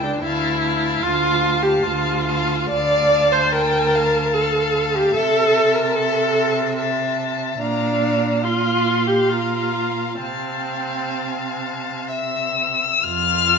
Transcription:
Already playing: cello C#2, violin G5 A5
0.04 viola D4
0.22 cello D2, viola E4, violin F5 A5
0.63 violin F5 A5
1.01 cello D2, viola F4
1.41 violin F5 A5
1.63 viola G4
1.83 cello D2, viola F4
2.27 violin F5 A5
2.70 cello D2, viola D5, violin F5 A5
3.32 viola C5
3.52 viola A#4, violin G5
3.95 violin F5
4.33 viola A4, violin F5
4.95 viola G4
5.14 cello C3, viola A4, violin E5 A5
5.75 viola A#4
5.95 viola A4, violin E5
6.78 violin E5 A5
7.59 cello A#2, viola D4, violin F5 A#5
8.04 violin A#5
8.43 viola F4, violin F5 C6
9.07 viola G4
9.29 viola F4, violin A#5
10.20 cello C3, viola C4, violin F5 A5
12.09 violin E5 E6
13.04 cello F2, viola F4, violin F6

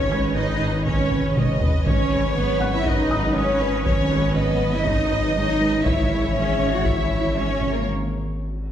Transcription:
Already playing: sub bass G#1, double bass section G#1, analog synth pad G#3 C#4 B4 C#5, cello section C#4, french horn section B4 C#5, viola section C#5, violin section C#5
0.11 analog synth bass G#3, violin section B4, felt piano G#6
0.35 analog synth bass G#2, cello section D#4, viola section B4, violin section C#5 D#5
0.60 analog synth bass G#2, violin section B4
0.85 analog synth bass G#2, cello section C#4, viola section C#5, violin section C#5, taiko
1.10 analog synth bass G#2, violin section B4, taiko mid
1.35 analog synth bass G#3, violin section C#5, viola section D#5, taiko mid
1.60 analog synth bass G#3, violin section B4, taiko low
1.84 sub bass G#1, double bass section G#1, analog synth bass G#2, analog synth pad F#3 C#4 B4 C#5, cello section C#4, french horn section B4 C#5, violin section C#5, viola section C#5, taiko
2.11 analog synth bass G#3, violin section B4
2.36 analog synth bass G#2, cello section B3, violin section B4 C#5
2.60 analog synth bass G#2, violin section B4, felt piano F#5 F#6
2.73 cello section E4, violin section E5
2.85 analog synth bass G#2, cello section D#4, viola section B4, violin section C#5 D#5, taiko
3.10 analog synth bass G#2, violin section B4, felt piano D#6
3.35 analog synth bass G#3, cello section C#4, viola section B4, violin section C#5
3.60 analog synth bass G#3, violin section B4
3.85 analog synth bass G#2, cello section C#4, violin section C#5, viola section C#5, taiko
4.10 analog synth bass G#3, violin section B4
4.35 analog synth bass G#2, cello section B3, violin section B4 C#5, viola section D#5
4.60 analog synth bass G#2, violin section B4
4.74 cello section E4, violin section E5
4.85 analog synth bass G#2, cello section D#4, violin section C#5 D#5, taiko
5.10 analog synth bass G#2, violin section B4
5.35 analog synth bass G#3, cello section D#4, violin section C#5 D#5
5.60 analog synth bass G#3, violin section B4
5.85 sub bass G#1, double bass section G#1, analog synth bass G#2, analog synth pad E3 C#4 G#4 C#5, cello section E4, viola section C#5, french horn section C#5 E5, violin section E5, taiko
6.11 analog synth bass G#3, violin section C#5
6.36 analog synth bass G#2, cello section C#4, violin section C#5 E5
6.61 analog synth bass G#2, violin section C#5
6.74 cello section F#4, violin section F#5
6.85 analog synth bass G#2, cello section E4, violin section E5, taiko
7.10 analog synth bass G#2, violin section C#5
7.35 analog synth bass G#3, cello section C#4, viola section C#5, violin section C#5 E5
7.61 analog synth bass G#3, violin section C#5, taiko mid
7.74 cello section A#3, violin section A#4
7.86 cymbal swell

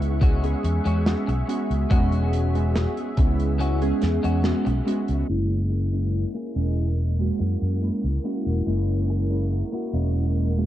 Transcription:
Already playing: fretless electric bass C#2, synth keys G#3 B3 C#4 E4, string machine G#4 E5 F#5 C#6
0.02 closed hi-hat
0.21 clean electric guitar G#3 C#4 F#4, kick, closed hi-hat
0.42 synth keys G#3 B3 C#4 G#4, closed hi-hat
0.63 fretless electric bass E2, muted clean electric guitar stroke, closed hi-hat
0.85 fretless electric bass E2, clean electric guitar G#3 C#4 F#4, closed hi-hat
1.05 synth keys G#3 B3 C#4 F#4, snare, closed hi-hat
1.27 fretless electric bass B1, muted clean electric guitar stroke, closed hi-hat
1.47 synth keys G#3 B3 C#4 F#4, muted clean electric guitar stroke, closed hi-hat
1.70 fretless electric bass C#2, closed hi-hat
1.90 fretless electric bass E1, synth keys G#3 B3 C#4 F#4, clean electric guitar G#3 C#4 F#4, kick, closed hi-hat
2.12 closed hi-hat
2.33 closed hi-hat
2.54 synth keys G#3 B3 C#4 F#4, closed hi-hat
2.76 snare, closed hi-hat
2.97 closed hi-hat
3.17 fretless electric bass C#2, synth keys G#3 B3 C#4 E4, muted clean electric guitar stroke, kick, closed hi-hat
3.40 closed hi-hat
3.59 clean electric guitar G#3 C#4 F#4, closed hi-hat
3.81 synth keys G#3 B3 C#4 G#4, closed hi-hat
4.01 fretless electric bass E2, muted clean electric guitar stroke, snare, closed hi-hat
4.23 fretless electric bass E2, clean electric guitar G#3 C#4 F#4, closed hi-hat
4.43 synth keys G#3 B3 C#4 F#4, snare, closed hi-hat
4.65 fretless electric bass B1, muted clean electric guitar stroke, closed hi-hat
4.85 synth keys G#3 B3 C#4 F#4, muted clean electric guitar stroke, closed hi-hat
5.08 fretless electric bass C#2, closed hi-hat
5.28 fretless electric bass F#1, synth keys G#3 A#3 C#4 E4, string machine E4 A#4 F#5 C#6
5.70 muted clean electric guitar stroke, closed hi-hat
5.92 synth keys G#3 A#3 C#4 E4, muted clean electric guitar stroke
6.12 muted clean electric guitar stroke, closed hi-hat
6.34 clean electric guitar A#3 E4 G#4
6.54 fretless electric bass E1, synth keys G#3 A#3 C#4 D#5, closed hi-hat
6.98 closed hi-hat
7.18 synth keys G#3 A#3 C#4 F#4
7.39 fretless electric bass F#2, muted clean electric guitar stroke, closed hi-hat
7.61 fretless electric bass F#2, muted clean electric guitar stroke
7.81 synth keys G#3 A#3 C#4 E4
8.04 fretless electric bass C#2, closed hi-hat
8.23 synth keys G#3 A#3 C#4 E4, clean electric guitar A#3 E4 F#4, closed hi-hat
8.46 fretless electric bass E1
8.66 fretless electric bass F#1, synth keys G#3 A#3 C#4 E4, closed hi-hat
9.08 muted clean electric guitar stroke, closed hi-hat
9.29 synth keys G#3 A#3 C#4 E4, muted clean electric guitar stroke, closed hi-hat
9.51 muted clean electric guitar stroke
9.72 clean electric guitar A#3 E4 F#4
9.92 fretless electric bass E1, synth keys G#3 A#3 C#4 D#5
10.35 closed hi-hat
10.57 synth keys G#3 A#3 C#4 F#4

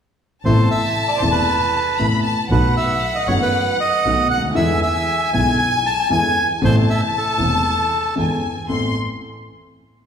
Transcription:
0.43 double bass A1, grand piano A1 A2 C3 A3 B3 E4, bandoneon C5, violin section A5
0.71 bandoneon E5
1.08 bandoneon D5
1.18 double bass E1, bandoneon C5
1.22 grand piano E1 E2 C3 A3 B3 E4
1.32 bandoneon B4
1.97 double bass A1, grand piano A1 A2 C3 A3 B3 E4, violin section B5
2.23 violin section A5
2.49 double bass B1, grand piano B1 B2 D#3 A3 B3 F#4, bandoneon B4, violin section F#5
2.77 bandoneon E5
3.15 bandoneon D#5
3.28 double bass F#1, grand piano F#1 F#2 D#3 A3 B3 F#4, bandoneon C#5
3.42 bandoneon B4
3.80 bandoneon D#5
4.04 double bass B1, grand piano B1 B2 D#3 A3 B3 F#4
4.30 double bass D2, bandoneon F#5
4.37 grand piano C#2
4.45 grand piano D2
4.50 grand piano D#2
4.55 grand piano E2 D3 E3 G#3 B3 E4, double bass E2, bandoneon E5, violin section G#5
4.83 bandoneon E5
5.33 double bass B1, grand piano B1 B2 D3 G#3 B3 E4, bandoneon G#5
5.58 bandoneon G#5
5.86 bandoneon A5
6.10 grand piano E2 D3 E3 G#3 B3 E4, double bass E2, bandoneon G#5
6.61 grand piano A1 A2 C3 A3 B3 E4, double bass A1, bandoneon C5, violin section A5
6.90 bandoneon E5
7.18 bandoneon A4
7.37 grand piano E1 E2 C3 A3 B3 E4, double bass E1
8.15 grand piano E2 D3 E3 G#3 B3 E4, double bass E2, violin section G#5
8.68 double bass A1, grand piano A1 B3 C4 A4, violin section C6

